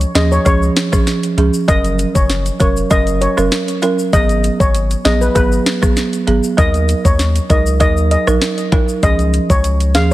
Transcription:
0.01 closed hi-hat, shaker
0.15 D#2 F3 C#4 G#4 D#5, snare, closed hi-hat, shaker
0.32 C#5, shaker
0.45 C#2 F3 C#4 G#4 C#5, kick, closed hi-hat, shaker
0.62 shaker
0.77 snare, closed hi-hat, shaker
0.92 F3 C#4 G#4, kick, cross-stick, shaker
1.07 snare, closed hi-hat, shaker
1.23 closed hi-hat, shaker
1.38 C#2 F3 C#4 G#4, closed hi-hat
1.54 shaker
1.68 F#1 F#3 C#4 A#4 D#5, kick, closed hi-hat, shaker
1.84 closed hi-hat, shaker
1.99 closed hi-hat, shaker
2.15 F#1 C#5, kick, shaker
2.30 snare, closed hi-hat, shaker
2.46 closed hi-hat, shaker
2.60 F1 F#3 C#4 A#4 C#5, kick, closed hi-hat, shaker
2.77 shaker
2.90 F#1 F#3 C#4 A#4 D#5, kick, closed hi-hat, shaker
3.07 closed hi-hat, shaker
3.21 C#5, closed hi-hat, shaker
3.37 F1 F#3 C#4 A#4, cross-stick, shaker
3.52 snare, closed hi-hat, shaker
3.68 closed hi-hat, shaker
3.82 F#3 C#4 A#4, closed hi-hat, high timbale, shaker
3.99 shaker
4.13 G#1 F#3 B3 G#4 D#5, kick, closed hi-hat, shaker
4.29 closed hi-hat, shaker
4.44 closed hi-hat, shaker
4.60 G#1 C#5, kick, shaker
4.75 closed hi-hat, shaker
4.91 closed hi-hat, shaker
5.05 A#1 F#3 B3 G#4 D#5, snare, closed hi-hat, shaker
5.21 B4, shaker
5.35 G#1 F#3 B3 G#4 B4, kick, closed hi-hat, shaker
5.52 shaker
5.66 snare, closed hi-hat, shaker
5.82 F#3 B3 G#4, kick, cross-stick, shaker
5.97 snare, closed hi-hat, shaker
6.13 closed hi-hat, shaker
6.27 G#1 F#3 B3 G#4, closed hi-hat
6.44 shaker
6.58 D#2 F#3 D#4 A#4 D#5, kick, closed hi-hat, shaker
6.74 closed hi-hat, shaker
6.89 closed hi-hat, shaker
7.05 D#2 C#5, kick, shaker
7.19 snare, closed hi-hat, shaker
7.36 closed hi-hat, shaker
7.49 C#2 F#3 D#4 A#4 D#5, kick, closed hi-hat, shaker
7.67 shaker
7.80 D#2 F#3 D#4 A#4 D#5, kick, closed hi-hat, shaker
7.97 shaker
8.11 D#5, closed hi-hat, shaker
8.27 A#1 F#3 D#4 A#4, cross-stick, shaker
8.42 snare, closed hi-hat, shaker
8.58 closed hi-hat, shaker
8.72 F#3 D#4 A#4, kick, closed hi-hat, high timbale
8.88 shaker
9.03 C#2 F3 C#4 G#4 D#5, kick, closed hi-hat, shaker
9.19 closed hi-hat, shaker
9.34 closed hi-hat, shaker
9.50 C#2 C#5, kick, shaker
9.64 closed hi-hat, shaker
9.80 closed hi-hat, shaker
9.95 D#2 F3 C#4 G#4 F5, snare, closed hi-hat, shaker

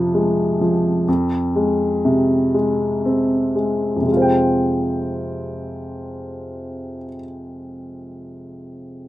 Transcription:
Already playing: F2 C3 F3
0.14 G#3
0.61 F3
1.08 F2
1.56 G#3
2.05 C3
2.54 G#3
3.05 C4
3.55 G#3
3.96 F2
4.01 C3
4.07 G#3
4.12 F4
4.17 C5
4.22 G5

